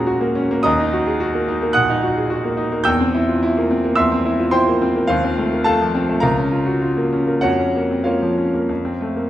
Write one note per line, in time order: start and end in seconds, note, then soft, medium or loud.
0.00 0.65 D#2 medium
0.00 0.68 A#2 medium
0.00 0.21 A#3 medium
0.00 0.35 C#4 medium
0.00 0.07 F#4 medium
0.00 0.69 G#4 medium
0.00 0.61 A#4 medium
0.00 0.64 D#5 medium
0.00 0.61 F#5 medium
0.00 0.64 A#5 loud
0.00 0.63 D#6 loud
0.07 0.30 F#4 medium
0.21 0.45 A#3 medium
0.35 0.60 C#4 medium
0.51 0.66 A#3 medium
0.63 1.72 D#2 medium
0.63 1.70 D#5 medium
0.63 1.70 A#5 medium
0.63 1.73 D#6 loud
0.79 1.01 D#4 medium
0.93 1.15 F#4 medium
1.07 1.20 G#4 medium
1.20 1.42 F#4 medium
1.34 1.56 A#3 medium
1.48 1.70 D#4 medium
1.62 1.84 A#3 medium
1.73 1.97 A#2 medium
1.73 2.81 F#5 medium
1.73 2.81 D#6 medium
1.73 2.85 F#6 loud
1.90 2.11 D#4 medium
2.03 2.25 F#4 medium
2.16 2.30 G#4 medium
2.30 2.52 F#4 medium
2.44 2.66 A#3 medium
2.57 2.80 D#4 medium
2.72 2.86 A#3 medium
2.84 3.95 E2 medium
2.84 3.94 G5 medium
2.84 3.94 E6 medium
2.84 3.97 G6 loud
3.00 3.23 C4 medium
3.14 3.37 E4 medium
3.29 3.43 F4 medium
3.43 3.65 E4 medium
3.57 3.79 A#3 medium
3.71 3.93 C4 medium
3.84 4.06 A#3 medium
3.96 5.07 E2 medium
3.96 4.50 E5 medium
3.96 4.50 C6 medium
3.96 4.53 E6 medium
4.12 4.34 C4 medium
4.26 4.49 E4 medium
4.39 4.54 F4 medium
4.51 4.76 E4 medium
4.51 5.05 C5 medium
4.51 5.05 G5 medium
4.51 5.09 C6 medium
4.68 4.91 A#3 medium
4.82 5.04 C4 medium
4.96 5.10 A#3 medium
5.07 6.20 D#2 medium
5.07 5.62 F4 medium
5.07 5.62 C5 medium
5.07 5.64 F5 medium
5.24 5.47 C4 medium
5.38 5.61 A3 medium
5.52 5.67 A#3 medium
5.64 5.89 A3 medium
5.64 6.19 A4 medium
5.64 6.19 F5 medium
5.64 6.22 A5 loud
5.81 6.03 F3 medium
5.95 6.18 C4 medium
6.09 6.23 A3 medium
6.20 7.40 C#2 medium
6.20 7.39 A#4 medium
6.20 7.39 F5 medium
6.20 7.42 A#5 medium
6.38 6.61 C#4 medium
6.52 6.76 F4 medium
6.66 6.82 F#4 medium
6.82 7.06 F4 medium
6.97 7.22 A#3 medium
7.13 7.38 C#4 medium
7.27 7.43 A#3 medium
7.41 8.65 F2 medium
7.41 8.02 F#4 medium
7.41 8.02 C#5 medium
7.41 8.05 F#5 medium
7.59 7.84 C#4 medium
7.76 8.01 A#3 medium
7.91 8.06 C4 soft
8.04 8.31 A#3 medium
8.04 9.26 F4 medium
8.04 9.26 C#5 soft
8.04 9.30 F5 medium
8.22 8.47 F3 soft
8.38 8.63 C#4 medium
8.54 8.69 A#3 medium
8.69 9.30 F2 medium
8.85 9.10 C4 medium
9.01 9.25 A3 medium
9.16 9.30 A#3 soft